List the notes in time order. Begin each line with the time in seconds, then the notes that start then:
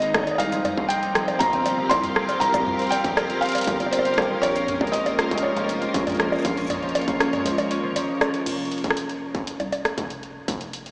Already playing: G#1 D#3 G#3 D#4 D#5 A#5
0.02 A#3, closed hi-hat
0.14 G#3, kick, cross-stick, closed hi-hat, high bongo
0.19 high bongo
0.23 high bongo
0.27 D#4, closed hi-hat, high bongo
0.31 high bongo
0.35 F5, high bongo
0.40 C2 G3 C4, closed hi-hat, high bongo
0.52 F3, closed hi-hat, cabasa
0.65 A#3, closed hi-hat, mid tom, high bongo
0.77 F4, kick
0.88 C4 G5, closed hi-hat
0.97 F5
1.03 G3, closed hi-hat
1.14 F3 G4, cross-stick, closed hi-hat
1.28 A#3, closed hi-hat, high bongo
1.39 F4 A#4 A#5, kick, closed hi-hat
1.53 G1 C4, closed hi-hat
1.66 G3, closed hi-hat, high bongo, cabasa
1.78 F3
1.89 C2 A#3 C6, kick, closed hi-hat, high bongo
2.03 F4, closed hi-hat, mid tom
2.16 C4, cross-stick
2.29 G3, closed hi-hat, high bongo, cabasa
2.40 C2 F3 A#5, closed hi-hat
2.54 A#3, kick, closed hi-hat, high bongo, cabasa
2.67 F4, mid tom
2.79 C4, closed hi-hat
2.82 closed hi-hat
2.84 closed hi-hat
2.87 closed hi-hat
2.89 G5, closed hi-hat
2.92 G3, closed hi-hat, high bongo
3.04 F3, kick, closed hi-hat
3.17 A#3, cross-stick, closed hi-hat, high bongo
3.30 F4, closed hi-hat, mid tom
3.41 C4 F5, closed hi-hat
3.46 closed hi-hat
3.49 closed hi-hat
3.52 G3, closed hi-hat
3.55 closed hi-hat, high bongo
3.58 closed hi-hat
3.61 closed hi-hat
3.63 closed hi-hat
3.67 G1 F3, kick, closed hi-hat
3.80 A#3, closed hi-hat, high bongo
3.86 high bongo
3.91 F4 C5, closed hi-hat, high bongo
3.99 high bongo
4.05 C4, closed hi-hat
4.14 closed hi-hat
4.18 G3, kick, cross-stick, closed hi-hat, high bongo
4.22 closed hi-hat
4.30 F3
4.42 A#1 A#3 C#5, closed hi-hat, high bongo
4.56 F4, closed hi-hat, cabasa
4.68 C#4, closed hi-hat, mid tom
4.81 G#3, kick, high bongo
4.87 closed hi-hat
4.92 F3 D#5, closed hi-hat
5.06 A#3, closed hi-hat, high bongo
5.19 F4, cross-stick, closed hi-hat
5.31 C#4, kick, closed hi-hat
5.35 D#5, closed hi-hat
5.42 G#3 C#5, high bongo
5.56 F1 F3, closed hi-hat
5.69 A#3, closed hi-hat, cabasa
5.82 F4, closed hi-hat
5.94 A#1 C#4, kick, closed hi-hat
6.07 G#3, closed hi-hat, mid tom, high bongo
6.09 closed hi-hat
6.12 closed hi-hat
6.15 closed hi-hat
6.17 F3, cross-stick, closed hi-hat
6.20 closed hi-hat
6.25 C#5
6.32 A#3, high bongo, cabasa
6.35 cabasa
6.38 cabasa
6.42 A#1 F4, kick, closed hi-hat, cabasa
6.57 C#4, closed hi-hat, cabasa
6.61 cabasa
6.64 cabasa
6.67 G#3, closed hi-hat, mid tom, high bongo, cabasa
6.83 F3, closed hi-hat
6.89 closed hi-hat
6.95 A#3, closed hi-hat, high bongo
7.02 closed hi-hat
7.08 F4, kick, closed hi-hat
7.20 C#4, cross-stick, closed hi-hat
7.33 G#3, closed hi-hat, mid tom, high bongo
7.37 mid tom
7.42 mid tom
7.46 C#2 F3, closed hi-hat, mid tom
7.50 mid tom
7.54 mid tom
7.58 A#3, closed hi-hat, high bongo
7.71 C#4, closed hi-hat
7.83 F3
7.96 F3, closed hi-hat, high bongo
8.09 G#3
8.21 F3, cross-stick, closed hi-hat, high bongo
8.34 C#4, closed hi-hat
8.46 F1, closed hi-hat, crash
8.59 closed hi-hat
8.65 closed hi-hat
8.72 closed hi-hat
8.78 closed hi-hat
8.84 kick, closed hi-hat
8.90 cross-stick
8.97 closed hi-hat
9.09 closed hi-hat
9.35 kick, closed hi-hat
9.47 closed hi-hat
9.60 C2, closed hi-hat, high bongo
9.72 closed hi-hat, high bongo
9.85 cross-stick, closed hi-hat, high bongo
9.98 F1, kick, closed hi-hat
10.10 closed hi-hat
10.23 closed hi-hat
10.48 F1, kick, closed hi-hat
10.61 closed hi-hat
10.73 closed hi-hat
10.86 closed hi-hat